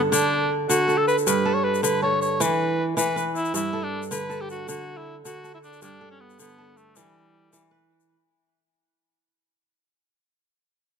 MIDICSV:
0, 0, Header, 1, 4, 480
1, 0, Start_track
1, 0, Tempo, 379027
1, 1602, Time_signature, 12, 3, 24, 8
1, 13918, End_track
2, 0, Start_track
2, 0, Title_t, "Cor anglais"
2, 0, Program_c, 0, 69
2, 157, Note_on_c, 0, 62, 90
2, 660, Note_off_c, 0, 62, 0
2, 876, Note_on_c, 0, 66, 89
2, 1239, Note_on_c, 0, 69, 84
2, 1258, Note_off_c, 0, 66, 0
2, 1354, Note_off_c, 0, 69, 0
2, 1362, Note_on_c, 0, 71, 99
2, 1470, Note_off_c, 0, 71, 0
2, 1611, Note_on_c, 0, 71, 84
2, 1949, Note_on_c, 0, 73, 86
2, 1968, Note_off_c, 0, 71, 0
2, 2077, Note_on_c, 0, 71, 74
2, 2096, Note_off_c, 0, 73, 0
2, 2314, Note_off_c, 0, 71, 0
2, 2321, Note_on_c, 0, 71, 85
2, 2547, Note_off_c, 0, 71, 0
2, 2564, Note_on_c, 0, 73, 98
2, 2789, Note_off_c, 0, 73, 0
2, 2804, Note_on_c, 0, 73, 84
2, 3058, Note_on_c, 0, 71, 91
2, 3077, Note_off_c, 0, 73, 0
2, 3595, Note_off_c, 0, 71, 0
2, 3769, Note_on_c, 0, 71, 90
2, 4106, Note_off_c, 0, 71, 0
2, 4248, Note_on_c, 0, 64, 88
2, 4474, Note_off_c, 0, 64, 0
2, 4496, Note_on_c, 0, 64, 86
2, 4853, Note_on_c, 0, 62, 86
2, 4872, Note_off_c, 0, 64, 0
2, 5094, Note_off_c, 0, 62, 0
2, 5216, Note_on_c, 0, 71, 92
2, 5585, Note_on_c, 0, 67, 83
2, 5604, Note_off_c, 0, 71, 0
2, 5700, Note_off_c, 0, 67, 0
2, 5709, Note_on_c, 0, 66, 77
2, 5926, Note_off_c, 0, 66, 0
2, 5940, Note_on_c, 0, 66, 83
2, 6298, Note_on_c, 0, 64, 72
2, 6317, Note_off_c, 0, 66, 0
2, 6537, Note_off_c, 0, 64, 0
2, 6655, Note_on_c, 0, 66, 89
2, 6990, Note_off_c, 0, 66, 0
2, 7021, Note_on_c, 0, 64, 81
2, 7074, Note_off_c, 0, 64, 0
2, 7140, Note_on_c, 0, 62, 82
2, 7361, Note_off_c, 0, 62, 0
2, 7376, Note_on_c, 0, 62, 83
2, 7710, Note_off_c, 0, 62, 0
2, 7736, Note_on_c, 0, 61, 75
2, 7853, Note_on_c, 0, 59, 74
2, 7872, Note_off_c, 0, 61, 0
2, 8094, Note_off_c, 0, 59, 0
2, 8107, Note_on_c, 0, 59, 83
2, 8576, Note_on_c, 0, 57, 76
2, 8595, Note_off_c, 0, 59, 0
2, 8819, Note_on_c, 0, 55, 71
2, 8838, Note_off_c, 0, 57, 0
2, 9773, Note_off_c, 0, 55, 0
2, 13918, End_track
3, 0, Start_track
3, 0, Title_t, "Kora"
3, 0, Program_c, 1, 46
3, 0, Note_on_c, 1, 43, 85
3, 0, Note_on_c, 1, 50, 75
3, 0, Note_on_c, 1, 69, 63
3, 138, Note_off_c, 1, 50, 0
3, 153, Note_on_c, 1, 50, 83
3, 218, Note_off_c, 1, 43, 0
3, 865, Note_off_c, 1, 50, 0
3, 881, Note_on_c, 1, 50, 80
3, 1107, Note_off_c, 1, 69, 0
3, 1112, Note_on_c, 1, 69, 56
3, 1606, Note_on_c, 1, 43, 86
3, 1665, Note_off_c, 1, 50, 0
3, 1837, Note_off_c, 1, 69, 0
3, 1842, Note_on_c, 1, 69, 65
3, 2319, Note_on_c, 1, 50, 75
3, 2558, Note_off_c, 1, 69, 0
3, 2563, Note_on_c, 1, 69, 56
3, 3043, Note_on_c, 1, 52, 95
3, 3112, Note_off_c, 1, 43, 0
3, 3112, Note_off_c, 1, 50, 0
3, 3743, Note_off_c, 1, 52, 0
3, 3759, Note_on_c, 1, 52, 78
3, 4002, Note_on_c, 1, 71, 67
3, 4231, Note_off_c, 1, 69, 0
3, 4482, Note_on_c, 1, 43, 78
3, 4557, Note_off_c, 1, 52, 0
3, 4724, Note_on_c, 1, 69, 67
3, 5206, Note_on_c, 1, 50, 78
3, 5436, Note_off_c, 1, 69, 0
3, 5441, Note_on_c, 1, 69, 57
3, 5559, Note_off_c, 1, 71, 0
3, 5917, Note_off_c, 1, 50, 0
3, 5932, Note_on_c, 1, 50, 78
3, 5999, Note_off_c, 1, 43, 0
3, 6637, Note_off_c, 1, 50, 0
3, 6652, Note_on_c, 1, 50, 69
3, 6884, Note_off_c, 1, 69, 0
3, 6889, Note_on_c, 1, 69, 59
3, 7372, Note_on_c, 1, 43, 85
3, 7439, Note_off_c, 1, 50, 0
3, 7606, Note_off_c, 1, 69, 0
3, 7611, Note_on_c, 1, 69, 67
3, 8097, Note_on_c, 1, 50, 79
3, 8333, Note_off_c, 1, 69, 0
3, 8338, Note_on_c, 1, 69, 64
3, 8821, Note_on_c, 1, 52, 86
3, 8876, Note_off_c, 1, 43, 0
3, 8876, Note_off_c, 1, 50, 0
3, 9517, Note_off_c, 1, 52, 0
3, 9532, Note_on_c, 1, 52, 73
3, 9765, Note_on_c, 1, 71, 59
3, 10006, Note_off_c, 1, 69, 0
3, 10312, Note_off_c, 1, 52, 0
3, 11322, Note_off_c, 1, 71, 0
3, 13918, End_track
4, 0, Start_track
4, 0, Title_t, "Drums"
4, 166, Note_on_c, 9, 82, 66
4, 293, Note_off_c, 9, 82, 0
4, 889, Note_on_c, 9, 82, 66
4, 1016, Note_off_c, 9, 82, 0
4, 1129, Note_on_c, 9, 82, 21
4, 1256, Note_off_c, 9, 82, 0
4, 1373, Note_on_c, 9, 82, 21
4, 1496, Note_off_c, 9, 82, 0
4, 1496, Note_on_c, 9, 82, 23
4, 1610, Note_off_c, 9, 82, 0
4, 1610, Note_on_c, 9, 82, 64
4, 1737, Note_off_c, 9, 82, 0
4, 2209, Note_on_c, 9, 82, 23
4, 2332, Note_off_c, 9, 82, 0
4, 2332, Note_on_c, 9, 82, 74
4, 2458, Note_off_c, 9, 82, 0
4, 2813, Note_on_c, 9, 82, 23
4, 2939, Note_off_c, 9, 82, 0
4, 3051, Note_on_c, 9, 82, 73
4, 3178, Note_off_c, 9, 82, 0
4, 3772, Note_on_c, 9, 82, 67
4, 3898, Note_off_c, 9, 82, 0
4, 4018, Note_on_c, 9, 82, 23
4, 4144, Note_off_c, 9, 82, 0
4, 4250, Note_on_c, 9, 82, 20
4, 4368, Note_off_c, 9, 82, 0
4, 4368, Note_on_c, 9, 82, 23
4, 4493, Note_off_c, 9, 82, 0
4, 4493, Note_on_c, 9, 82, 60
4, 4620, Note_off_c, 9, 82, 0
4, 5099, Note_on_c, 9, 82, 22
4, 5212, Note_off_c, 9, 82, 0
4, 5212, Note_on_c, 9, 82, 64
4, 5338, Note_off_c, 9, 82, 0
4, 5452, Note_on_c, 9, 82, 20
4, 5578, Note_off_c, 9, 82, 0
4, 5693, Note_on_c, 9, 82, 21
4, 5820, Note_off_c, 9, 82, 0
4, 5933, Note_on_c, 9, 82, 66
4, 6060, Note_off_c, 9, 82, 0
4, 6656, Note_on_c, 9, 82, 66
4, 6782, Note_off_c, 9, 82, 0
4, 6892, Note_on_c, 9, 82, 22
4, 7019, Note_off_c, 9, 82, 0
4, 7135, Note_on_c, 9, 82, 20
4, 7254, Note_off_c, 9, 82, 0
4, 7254, Note_on_c, 9, 82, 22
4, 7369, Note_off_c, 9, 82, 0
4, 7369, Note_on_c, 9, 82, 68
4, 7495, Note_off_c, 9, 82, 0
4, 7976, Note_on_c, 9, 82, 21
4, 8095, Note_off_c, 9, 82, 0
4, 8095, Note_on_c, 9, 82, 72
4, 8222, Note_off_c, 9, 82, 0
4, 8579, Note_on_c, 9, 82, 23
4, 8706, Note_off_c, 9, 82, 0
4, 8814, Note_on_c, 9, 82, 69
4, 8940, Note_off_c, 9, 82, 0
4, 9535, Note_on_c, 9, 82, 68
4, 9662, Note_off_c, 9, 82, 0
4, 10133, Note_on_c, 9, 82, 22
4, 10260, Note_off_c, 9, 82, 0
4, 13918, End_track
0, 0, End_of_file